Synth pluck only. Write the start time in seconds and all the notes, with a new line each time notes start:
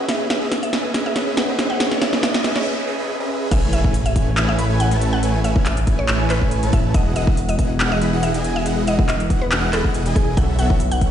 0.09 E5
0.30 E5
0.63 E5
1.06 E5
1.37 F#5
1.70 F#5
2.01 E5
2.23 E5
2.56 C#5
3.51 E5
3.73 E5
4.06 E5
4.49 E5
4.80 F#5
5.13 F#5
5.44 E5
5.66 E5
5.99 C#5
6.30 B4
6.73 E5
6.95 D#5
7.16 D#5
7.49 D#5
7.92 D#5
8.23 E5
8.56 E5
8.88 D#5
9.09 D#5
9.42 B4
9.73 A4
10.16 G#4
10.37 F#5
10.59 F#5
10.92 F#5